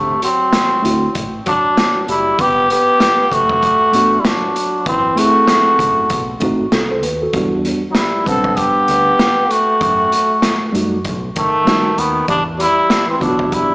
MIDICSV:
0, 0, Header, 1, 6, 480
1, 0, Start_track
1, 0, Key_signature, 1, "minor"
1, 0, Tempo, 618557
1, 1853, Time_signature, 4, 2, 24, 8
1, 10668, End_track
2, 0, Start_track
2, 0, Title_t, "Trombone"
2, 0, Program_c, 0, 57
2, 0, Note_on_c, 0, 57, 90
2, 181, Note_off_c, 0, 57, 0
2, 189, Note_on_c, 0, 60, 92
2, 906, Note_off_c, 0, 60, 0
2, 1150, Note_on_c, 0, 62, 107
2, 1590, Note_off_c, 0, 62, 0
2, 1630, Note_on_c, 0, 64, 97
2, 1872, Note_on_c, 0, 67, 112
2, 1883, Note_off_c, 0, 64, 0
2, 2102, Note_off_c, 0, 67, 0
2, 2113, Note_on_c, 0, 67, 108
2, 2592, Note_on_c, 0, 66, 100
2, 2603, Note_off_c, 0, 67, 0
2, 3262, Note_on_c, 0, 64, 68
2, 3274, Note_off_c, 0, 66, 0
2, 3309, Note_on_c, 0, 62, 88
2, 3321, Note_off_c, 0, 64, 0
2, 3781, Note_off_c, 0, 62, 0
2, 3791, Note_on_c, 0, 60, 101
2, 4029, Note_on_c, 0, 66, 89
2, 4041, Note_off_c, 0, 60, 0
2, 4981, Note_off_c, 0, 66, 0
2, 6143, Note_on_c, 0, 63, 63
2, 6184, Note_on_c, 0, 64, 87
2, 6196, Note_off_c, 0, 63, 0
2, 6419, Note_off_c, 0, 64, 0
2, 6423, Note_on_c, 0, 69, 91
2, 6661, Note_on_c, 0, 67, 104
2, 6672, Note_off_c, 0, 69, 0
2, 7381, Note_on_c, 0, 66, 90
2, 7392, Note_off_c, 0, 67, 0
2, 8337, Note_off_c, 0, 66, 0
2, 8830, Note_on_c, 0, 57, 99
2, 9304, Note_on_c, 0, 59, 87
2, 9316, Note_off_c, 0, 57, 0
2, 9538, Note_off_c, 0, 59, 0
2, 9544, Note_on_c, 0, 62, 111
2, 9650, Note_off_c, 0, 62, 0
2, 9789, Note_on_c, 0, 64, 109
2, 10138, Note_off_c, 0, 64, 0
2, 10168, Note_on_c, 0, 60, 88
2, 10253, Note_off_c, 0, 60, 0
2, 10261, Note_on_c, 0, 62, 87
2, 10505, Note_on_c, 0, 64, 97
2, 10516, Note_off_c, 0, 62, 0
2, 10668, Note_off_c, 0, 64, 0
2, 10668, End_track
3, 0, Start_track
3, 0, Title_t, "Tine electric piano"
3, 0, Program_c, 1, 4
3, 639, Note_on_c, 1, 57, 67
3, 647, Note_on_c, 1, 60, 59
3, 655, Note_on_c, 1, 64, 62
3, 665, Note_on_c, 1, 66, 75
3, 828, Note_off_c, 1, 57, 0
3, 832, Note_off_c, 1, 60, 0
3, 836, Note_off_c, 1, 64, 0
3, 841, Note_off_c, 1, 66, 0
3, 3045, Note_on_c, 1, 57, 62
3, 3053, Note_on_c, 1, 59, 53
3, 3061, Note_on_c, 1, 62, 54
3, 3068, Note_on_c, 1, 66, 63
3, 3231, Note_off_c, 1, 57, 0
3, 3235, Note_off_c, 1, 59, 0
3, 3239, Note_off_c, 1, 62, 0
3, 3242, Note_off_c, 1, 66, 0
3, 4004, Note_on_c, 1, 57, 63
3, 4012, Note_on_c, 1, 60, 58
3, 4020, Note_on_c, 1, 64, 56
3, 4027, Note_on_c, 1, 68, 68
3, 4690, Note_off_c, 1, 57, 0
3, 4694, Note_off_c, 1, 60, 0
3, 4698, Note_off_c, 1, 64, 0
3, 4701, Note_off_c, 1, 68, 0
3, 4967, Note_on_c, 1, 57, 78
3, 4972, Note_on_c, 1, 60, 74
3, 4983, Note_on_c, 1, 63, 77
3, 4989, Note_on_c, 1, 66, 91
3, 5152, Note_off_c, 1, 57, 0
3, 5154, Note_off_c, 1, 60, 0
3, 5160, Note_off_c, 1, 63, 0
3, 5163, Note_off_c, 1, 66, 0
3, 5220, Note_on_c, 1, 69, 56
3, 5226, Note_on_c, 1, 66, 47
3, 5353, Note_off_c, 1, 69, 0
3, 5356, Note_off_c, 1, 66, 0
3, 5364, Note_on_c, 1, 72, 66
3, 5369, Note_on_c, 1, 69, 54
3, 5452, Note_off_c, 1, 72, 0
3, 5455, Note_off_c, 1, 69, 0
3, 5456, Note_on_c, 1, 71, 61
3, 5590, Note_off_c, 1, 71, 0
3, 5604, Note_on_c, 1, 69, 58
3, 5609, Note_on_c, 1, 66, 50
3, 5688, Note_on_c, 1, 54, 61
3, 5697, Note_on_c, 1, 59, 74
3, 5703, Note_off_c, 1, 66, 0
3, 5705, Note_on_c, 1, 62, 68
3, 5712, Note_on_c, 1, 66, 81
3, 5739, Note_on_c, 1, 55, 75
3, 5750, Note_off_c, 1, 54, 0
3, 5828, Note_off_c, 1, 69, 0
3, 6049, Note_off_c, 1, 59, 0
3, 6053, Note_off_c, 1, 62, 0
3, 6057, Note_off_c, 1, 66, 0
3, 6070, Note_off_c, 1, 55, 0
3, 6407, Note_on_c, 1, 55, 62
3, 6414, Note_on_c, 1, 71, 55
3, 6423, Note_on_c, 1, 62, 61
3, 6430, Note_on_c, 1, 78, 69
3, 7091, Note_off_c, 1, 55, 0
3, 7095, Note_off_c, 1, 71, 0
3, 7099, Note_off_c, 1, 62, 0
3, 7103, Note_off_c, 1, 78, 0
3, 8321, Note_on_c, 1, 55, 69
3, 8330, Note_on_c, 1, 57, 62
3, 8339, Note_on_c, 1, 63, 59
3, 8346, Note_on_c, 1, 66, 78
3, 8509, Note_off_c, 1, 55, 0
3, 8513, Note_off_c, 1, 57, 0
3, 8518, Note_off_c, 1, 63, 0
3, 8521, Note_off_c, 1, 66, 0
3, 9041, Note_on_c, 1, 55, 61
3, 9049, Note_on_c, 1, 57, 58
3, 9057, Note_on_c, 1, 63, 53
3, 9065, Note_on_c, 1, 66, 69
3, 9229, Note_off_c, 1, 55, 0
3, 9233, Note_off_c, 1, 57, 0
3, 9237, Note_off_c, 1, 63, 0
3, 9241, Note_off_c, 1, 66, 0
3, 10241, Note_on_c, 1, 52, 60
3, 10248, Note_on_c, 1, 59, 56
3, 10255, Note_on_c, 1, 62, 54
3, 10262, Note_on_c, 1, 65, 53
3, 10314, Note_on_c, 1, 66, 64
3, 10318, Note_off_c, 1, 65, 0
3, 10668, Note_off_c, 1, 52, 0
3, 10668, Note_off_c, 1, 59, 0
3, 10668, Note_off_c, 1, 62, 0
3, 10668, Note_off_c, 1, 66, 0
3, 10668, End_track
4, 0, Start_track
4, 0, Title_t, "Tenor saxophone"
4, 0, Program_c, 2, 66
4, 0, Note_on_c, 2, 48, 74
4, 170, Note_off_c, 2, 48, 0
4, 174, Note_on_c, 2, 54, 85
4, 899, Note_off_c, 2, 54, 0
4, 1136, Note_on_c, 2, 54, 86
4, 1583, Note_off_c, 2, 54, 0
4, 1618, Note_on_c, 2, 55, 82
4, 1856, Note_on_c, 2, 59, 92
4, 1868, Note_off_c, 2, 55, 0
4, 2091, Note_off_c, 2, 59, 0
4, 2095, Note_on_c, 2, 59, 91
4, 2575, Note_on_c, 2, 57, 86
4, 2587, Note_off_c, 2, 59, 0
4, 3256, Note_on_c, 2, 55, 61
4, 3267, Note_off_c, 2, 57, 0
4, 3300, Note_on_c, 2, 54, 72
4, 3311, Note_off_c, 2, 55, 0
4, 3776, Note_off_c, 2, 54, 0
4, 3782, Note_on_c, 2, 52, 76
4, 4023, Note_on_c, 2, 57, 81
4, 4035, Note_off_c, 2, 52, 0
4, 4978, Note_off_c, 2, 57, 0
4, 6130, Note_on_c, 2, 54, 54
4, 6172, Note_on_c, 2, 55, 68
4, 6183, Note_off_c, 2, 54, 0
4, 6405, Note_off_c, 2, 55, 0
4, 6410, Note_on_c, 2, 60, 87
4, 6649, Note_on_c, 2, 59, 88
4, 6661, Note_off_c, 2, 60, 0
4, 7366, Note_on_c, 2, 57, 78
4, 7378, Note_off_c, 2, 59, 0
4, 8330, Note_off_c, 2, 57, 0
4, 8813, Note_on_c, 2, 51, 80
4, 9292, Note_off_c, 2, 51, 0
4, 9292, Note_on_c, 2, 51, 77
4, 9525, Note_off_c, 2, 51, 0
4, 9529, Note_on_c, 2, 55, 86
4, 9638, Note_off_c, 2, 55, 0
4, 9765, Note_on_c, 2, 55, 98
4, 10125, Note_off_c, 2, 55, 0
4, 10143, Note_on_c, 2, 52, 76
4, 10237, Note_off_c, 2, 52, 0
4, 10242, Note_on_c, 2, 54, 84
4, 10481, Note_on_c, 2, 55, 82
4, 10492, Note_off_c, 2, 54, 0
4, 10668, Note_off_c, 2, 55, 0
4, 10668, End_track
5, 0, Start_track
5, 0, Title_t, "Fingered electric bass"
5, 0, Program_c, 3, 33
5, 0, Note_on_c, 3, 38, 95
5, 115, Note_off_c, 3, 38, 0
5, 655, Note_on_c, 3, 38, 73
5, 835, Note_off_c, 3, 38, 0
5, 898, Note_on_c, 3, 33, 80
5, 1077, Note_off_c, 3, 33, 0
5, 1618, Note_on_c, 3, 30, 75
5, 1797, Note_off_c, 3, 30, 0
5, 1854, Note_on_c, 3, 31, 101
5, 2142, Note_off_c, 3, 31, 0
5, 2576, Note_on_c, 3, 30, 84
5, 2755, Note_off_c, 3, 30, 0
5, 3054, Note_on_c, 3, 33, 82
5, 3234, Note_off_c, 3, 33, 0
5, 3775, Note_on_c, 3, 30, 96
5, 3955, Note_off_c, 3, 30, 0
5, 4496, Note_on_c, 3, 30, 85
5, 4675, Note_off_c, 3, 30, 0
5, 4737, Note_on_c, 3, 35, 89
5, 4916, Note_off_c, 3, 35, 0
5, 4981, Note_on_c, 3, 33, 79
5, 5159, Note_off_c, 3, 33, 0
5, 5218, Note_on_c, 3, 36, 87
5, 5456, Note_off_c, 3, 36, 0
5, 5456, Note_on_c, 3, 39, 76
5, 5636, Note_off_c, 3, 39, 0
5, 5695, Note_on_c, 3, 40, 93
5, 5983, Note_off_c, 3, 40, 0
5, 6414, Note_on_c, 3, 35, 78
5, 6595, Note_off_c, 3, 35, 0
5, 6897, Note_on_c, 3, 38, 77
5, 7076, Note_off_c, 3, 38, 0
5, 7613, Note_on_c, 3, 42, 100
5, 7794, Note_off_c, 3, 42, 0
5, 8339, Note_on_c, 3, 42, 85
5, 8575, Note_on_c, 3, 35, 85
5, 8587, Note_off_c, 3, 42, 0
5, 8755, Note_off_c, 3, 35, 0
5, 9295, Note_on_c, 3, 39, 81
5, 9475, Note_off_c, 3, 39, 0
5, 9534, Note_on_c, 3, 40, 97
5, 9822, Note_off_c, 3, 40, 0
5, 10255, Note_on_c, 3, 35, 87
5, 10435, Note_off_c, 3, 35, 0
5, 10668, End_track
6, 0, Start_track
6, 0, Title_t, "Drums"
6, 173, Note_on_c, 9, 42, 74
6, 250, Note_off_c, 9, 42, 0
6, 408, Note_on_c, 9, 38, 110
6, 412, Note_on_c, 9, 42, 94
6, 486, Note_off_c, 9, 38, 0
6, 489, Note_off_c, 9, 42, 0
6, 658, Note_on_c, 9, 42, 71
6, 736, Note_off_c, 9, 42, 0
6, 892, Note_on_c, 9, 42, 89
6, 895, Note_on_c, 9, 36, 84
6, 969, Note_off_c, 9, 42, 0
6, 973, Note_off_c, 9, 36, 0
6, 1133, Note_on_c, 9, 42, 72
6, 1140, Note_on_c, 9, 36, 82
6, 1211, Note_off_c, 9, 42, 0
6, 1217, Note_off_c, 9, 36, 0
6, 1377, Note_on_c, 9, 38, 107
6, 1377, Note_on_c, 9, 42, 72
6, 1454, Note_off_c, 9, 42, 0
6, 1455, Note_off_c, 9, 38, 0
6, 1617, Note_on_c, 9, 42, 66
6, 1694, Note_off_c, 9, 42, 0
6, 1852, Note_on_c, 9, 42, 79
6, 1853, Note_on_c, 9, 36, 111
6, 1930, Note_off_c, 9, 42, 0
6, 1931, Note_off_c, 9, 36, 0
6, 2096, Note_on_c, 9, 42, 78
6, 2174, Note_off_c, 9, 42, 0
6, 2331, Note_on_c, 9, 38, 113
6, 2334, Note_on_c, 9, 42, 90
6, 2408, Note_off_c, 9, 38, 0
6, 2412, Note_off_c, 9, 42, 0
6, 2573, Note_on_c, 9, 36, 78
6, 2580, Note_on_c, 9, 42, 65
6, 2651, Note_off_c, 9, 36, 0
6, 2657, Note_off_c, 9, 42, 0
6, 2712, Note_on_c, 9, 36, 85
6, 2789, Note_off_c, 9, 36, 0
6, 2812, Note_on_c, 9, 42, 84
6, 2815, Note_on_c, 9, 36, 83
6, 2889, Note_off_c, 9, 42, 0
6, 2892, Note_off_c, 9, 36, 0
6, 3052, Note_on_c, 9, 42, 72
6, 3130, Note_off_c, 9, 42, 0
6, 3295, Note_on_c, 9, 38, 113
6, 3295, Note_on_c, 9, 42, 72
6, 3372, Note_off_c, 9, 42, 0
6, 3373, Note_off_c, 9, 38, 0
6, 3537, Note_on_c, 9, 42, 68
6, 3615, Note_off_c, 9, 42, 0
6, 3771, Note_on_c, 9, 42, 80
6, 3773, Note_on_c, 9, 36, 111
6, 3849, Note_off_c, 9, 42, 0
6, 3850, Note_off_c, 9, 36, 0
6, 4015, Note_on_c, 9, 42, 75
6, 4092, Note_off_c, 9, 42, 0
6, 4249, Note_on_c, 9, 38, 110
6, 4253, Note_on_c, 9, 42, 93
6, 4327, Note_off_c, 9, 38, 0
6, 4330, Note_off_c, 9, 42, 0
6, 4493, Note_on_c, 9, 36, 81
6, 4500, Note_on_c, 9, 42, 67
6, 4571, Note_off_c, 9, 36, 0
6, 4578, Note_off_c, 9, 42, 0
6, 4731, Note_on_c, 9, 42, 88
6, 4735, Note_on_c, 9, 36, 85
6, 4809, Note_off_c, 9, 42, 0
6, 4812, Note_off_c, 9, 36, 0
6, 4969, Note_on_c, 9, 42, 67
6, 4979, Note_on_c, 9, 36, 90
6, 5046, Note_off_c, 9, 42, 0
6, 5056, Note_off_c, 9, 36, 0
6, 5214, Note_on_c, 9, 38, 111
6, 5214, Note_on_c, 9, 42, 72
6, 5292, Note_off_c, 9, 38, 0
6, 5292, Note_off_c, 9, 42, 0
6, 5454, Note_on_c, 9, 42, 69
6, 5531, Note_off_c, 9, 42, 0
6, 5690, Note_on_c, 9, 42, 75
6, 5692, Note_on_c, 9, 36, 109
6, 5767, Note_off_c, 9, 42, 0
6, 5770, Note_off_c, 9, 36, 0
6, 5935, Note_on_c, 9, 42, 72
6, 6013, Note_off_c, 9, 42, 0
6, 6166, Note_on_c, 9, 38, 110
6, 6170, Note_on_c, 9, 42, 93
6, 6244, Note_off_c, 9, 38, 0
6, 6247, Note_off_c, 9, 42, 0
6, 6412, Note_on_c, 9, 36, 86
6, 6418, Note_on_c, 9, 42, 66
6, 6490, Note_off_c, 9, 36, 0
6, 6496, Note_off_c, 9, 42, 0
6, 6551, Note_on_c, 9, 36, 86
6, 6629, Note_off_c, 9, 36, 0
6, 6648, Note_on_c, 9, 42, 88
6, 6654, Note_on_c, 9, 36, 83
6, 6726, Note_off_c, 9, 42, 0
6, 6732, Note_off_c, 9, 36, 0
6, 6890, Note_on_c, 9, 42, 70
6, 6968, Note_off_c, 9, 42, 0
6, 7134, Note_on_c, 9, 38, 113
6, 7134, Note_on_c, 9, 42, 76
6, 7212, Note_off_c, 9, 38, 0
6, 7212, Note_off_c, 9, 42, 0
6, 7376, Note_on_c, 9, 42, 70
6, 7454, Note_off_c, 9, 42, 0
6, 7611, Note_on_c, 9, 42, 79
6, 7612, Note_on_c, 9, 36, 112
6, 7689, Note_off_c, 9, 42, 0
6, 7690, Note_off_c, 9, 36, 0
6, 7854, Note_on_c, 9, 42, 78
6, 7932, Note_off_c, 9, 42, 0
6, 8088, Note_on_c, 9, 38, 109
6, 8092, Note_on_c, 9, 42, 100
6, 8166, Note_off_c, 9, 38, 0
6, 8170, Note_off_c, 9, 42, 0
6, 8340, Note_on_c, 9, 42, 68
6, 8418, Note_off_c, 9, 42, 0
6, 8571, Note_on_c, 9, 42, 89
6, 8575, Note_on_c, 9, 36, 84
6, 8649, Note_off_c, 9, 42, 0
6, 8652, Note_off_c, 9, 36, 0
6, 8813, Note_on_c, 9, 42, 69
6, 8819, Note_on_c, 9, 36, 89
6, 8891, Note_off_c, 9, 42, 0
6, 8897, Note_off_c, 9, 36, 0
6, 9057, Note_on_c, 9, 42, 72
6, 9058, Note_on_c, 9, 38, 114
6, 9135, Note_off_c, 9, 38, 0
6, 9135, Note_off_c, 9, 42, 0
6, 9295, Note_on_c, 9, 42, 68
6, 9373, Note_off_c, 9, 42, 0
6, 9530, Note_on_c, 9, 42, 84
6, 9532, Note_on_c, 9, 36, 106
6, 9608, Note_off_c, 9, 42, 0
6, 9609, Note_off_c, 9, 36, 0
6, 9776, Note_on_c, 9, 42, 76
6, 9854, Note_off_c, 9, 42, 0
6, 10011, Note_on_c, 9, 38, 110
6, 10014, Note_on_c, 9, 42, 96
6, 10088, Note_off_c, 9, 38, 0
6, 10092, Note_off_c, 9, 42, 0
6, 10253, Note_on_c, 9, 36, 78
6, 10260, Note_on_c, 9, 42, 69
6, 10330, Note_off_c, 9, 36, 0
6, 10338, Note_off_c, 9, 42, 0
6, 10391, Note_on_c, 9, 36, 82
6, 10469, Note_off_c, 9, 36, 0
6, 10492, Note_on_c, 9, 42, 86
6, 10494, Note_on_c, 9, 36, 84
6, 10569, Note_off_c, 9, 42, 0
6, 10572, Note_off_c, 9, 36, 0
6, 10668, End_track
0, 0, End_of_file